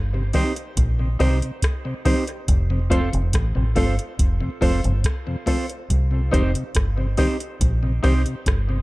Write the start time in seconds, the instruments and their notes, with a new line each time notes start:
Already playing: fingered electric bass G1
0.13 tonewheel organ C3, upright piano G4 C5
0.33 tonewheel organ D#3 G3 C4, clean electric guitar C4 D#4 G4 C5, upright piano D#4 G4 C5, kick, open hi-hat
0.56 muted clean electric guitar stroke, closed hi-hat
0.77 fingered electric bass A#1, kick, closed hi-hat
0.99 tonewheel organ C3
1.19 fingered electric bass C2, tonewheel organ D#3 G3 C4, clean electric guitar C4 D#4 G4 C5, upright piano D#4 G4 C5, kick, open hi-hat
1.42 tonewheel organ C3, closed hi-hat
1.62 kick, cross-stick, closed hi-hat
1.85 tonewheel organ C3
2.05 tonewheel organ D#3 G3 C4, clean electric guitar C4 D#4 G4 C5, upright piano D#4 G4 C5, kick, open hi-hat
2.27 upright piano G4 C5, closed hi-hat
2.48 fingered electric bass F1, kick, closed hi-hat
2.70 tonewheel organ F2 C3
2.90 tonewheel organ F3 A3 C4, clean electric guitar C4 F4 A4 C5, upright piano F4 A4 C5, kick, closed hi-hat
3.13 fingered electric bass F1, tonewheel organ F2 C3, closed hi-hat
3.33 fingered electric bass A1, kick, cross-stick, closed hi-hat
3.55 fingered electric bass A1, tonewheel organ F2 C3, upright piano A4 C5
3.75 fingered electric bass G1, tonewheel organ F3 A3 C4, clean electric guitar C4 F4 A4 C5, upright piano F4 A4 C5, kick, open hi-hat
3.99 muted clean electric guitar stroke, closed hi-hat
4.19 fingered electric bass F1, kick, closed hi-hat
4.41 tonewheel organ F2 C3
4.61 fingered electric bass F1, tonewheel organ F3 A3 C4, clean electric guitar C4 F4 A4 C5, upright piano F4 A4 C5, kick, open hi-hat
4.83 fingered electric bass G1, tonewheel organ F2 C3, closed hi-hat
5.04 kick, cross-stick, closed hi-hat
5.27 tonewheel organ F2 C3
5.46 tonewheel organ F3 A3 C4, clean electric guitar C4 F4 A4 C5, upright piano F4 A4 C5, kick, open hi-hat
5.69 upright piano A4 C5, closed hi-hat
5.90 fingered electric bass C2, kick, closed hi-hat
6.11 tonewheel organ C3
6.31 fingered electric bass F1, tonewheel organ D#3 G3 C4, clean electric guitar C4 D#4 G4 C5, upright piano D#4 G4 C5, kick, closed hi-hat
6.54 tonewheel organ C3, closed hi-hat
6.75 fingered electric bass G1, kick, cross-stick, closed hi-hat
6.98 tonewheel organ C3, upright piano G4 C5
7.17 tonewheel organ D#3 G3 C4, clean electric guitar C4 D#4 G4 C5, upright piano D#4 G4 C5, kick, open hi-hat
7.40 muted clean electric guitar stroke, closed hi-hat
7.61 fingered electric bass A#1, kick, closed hi-hat
7.83 tonewheel organ C3
8.03 fingered electric bass C2, tonewheel organ D#3 G3 C4, clean electric guitar C4 D#4 G4 C5, upright piano D#4 G4 C5, kick, open hi-hat
8.26 tonewheel organ C3, closed hi-hat
8.46 fingered electric bass G1, kick, cross-stick, closed hi-hat
8.69 tonewheel organ C3